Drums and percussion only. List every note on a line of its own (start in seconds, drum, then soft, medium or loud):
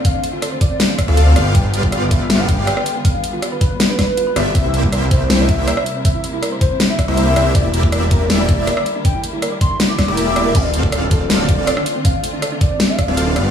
0.05 kick loud
0.05 closed hi-hat medium
0.24 closed hi-hat medium
0.42 cross-stick medium
0.42 closed hi-hat medium
0.61 kick loud
0.61 closed hi-hat medium
0.80 snare loud
0.80 closed hi-hat medium
0.99 kick medium
0.99 cross-stick medium
0.99 closed hi-hat medium
1.17 closed hi-hat medium
1.36 cross-stick medium
1.36 closed hi-hat medium
1.55 kick loud
1.55 closed hi-hat medium
1.74 closed hi-hat medium
1.83 kick medium
1.92 cross-stick medium
1.92 closed hi-hat medium
2.11 kick loud
2.11 closed hi-hat medium
2.30 snare loud
2.30 closed hi-hat medium
2.49 kick loud
2.49 closed hi-hat medium
2.67 cross-stick medium
2.67 closed hi-hat medium
2.77 cross-stick medium
2.86 closed hi-hat medium
3.05 kick loud
3.05 closed hi-hat medium
3.24 closed hi-hat medium
3.42 cross-stick medium
3.42 closed hi-hat medium
3.61 kick loud
3.61 closed hi-hat medium
3.80 snare loud
3.80 closed hi-hat medium
3.99 kick medium
3.99 cross-stick medium
3.99 snare medium
3.99 closed hi-hat medium
4.17 closed hi-hat medium
4.36 cross-stick medium
4.36 closed hi-hat medium
4.55 kick loud
4.55 closed hi-hat medium
4.74 closed hi-hat medium
4.83 kick medium
4.92 cross-stick medium
4.92 closed hi-hat medium
5.11 kick loud
5.11 closed hi-hat medium
5.30 snare loud
5.30 closed hi-hat medium
5.49 kick loud
5.49 closed hi-hat medium
5.68 cross-stick medium
5.68 closed hi-hat medium
5.77 cross-stick medium
5.86 closed hi-hat medium
6.05 kick loud
6.05 closed hi-hat medium
6.24 closed hi-hat medium
6.43 cross-stick medium
6.43 closed hi-hat medium
6.61 kick loud
6.61 closed hi-hat medium
6.80 snare loud
6.80 closed hi-hat medium
6.99 kick medium
6.99 cross-stick medium
6.99 closed hi-hat medium
7.17 closed hi-hat medium
7.36 cross-stick medium
7.36 closed hi-hat medium
7.55 kick loud
7.55 closed hi-hat medium
7.74 closed hi-hat medium
7.83 kick medium
7.92 cross-stick medium
7.92 closed hi-hat medium
8.11 kick loud
8.11 closed hi-hat medium
8.30 snare loud
8.30 closed hi-hat medium
8.49 kick loud
8.49 closed hi-hat medium
8.67 cross-stick medium
8.67 closed hi-hat medium
8.77 cross-stick medium
8.86 closed hi-hat medium
9.05 kick loud
9.05 closed hi-hat medium
9.24 closed hi-hat medium
9.42 cross-stick medium
9.42 closed hi-hat medium
9.61 kick loud
9.61 closed hi-hat medium
9.80 snare loud
9.80 closed hi-hat medium
9.99 kick medium
9.99 cross-stick medium
9.99 snare medium
9.99 closed hi-hat medium
10.17 closed hi-hat medium
10.36 cross-stick medium
10.36 closed hi-hat medium
10.55 kick loud
10.55 closed hi-hat medium
10.55 crash medium
10.74 closed hi-hat medium
10.83 kick medium
10.92 cross-stick medium
10.92 closed hi-hat medium
11.11 kick loud
11.11 closed hi-hat medium
11.30 snare loud
11.30 closed hi-hat medium
11.49 kick loud
11.49 closed hi-hat medium
11.67 cross-stick medium
11.67 closed hi-hat medium
11.77 cross-stick medium
11.86 closed hi-hat medium
12.05 kick loud
12.05 closed hi-hat medium
12.24 closed hi-hat medium
12.42 cross-stick medium
12.42 closed hi-hat medium
12.61 kick loud
12.61 closed hi-hat medium
12.80 snare loud
12.80 closed hi-hat medium
12.99 kick medium
12.99 cross-stick medium
12.99 closed hi-hat medium
13.17 closed hi-hat medium
13.36 cross-stick medium
13.36 closed hi-hat medium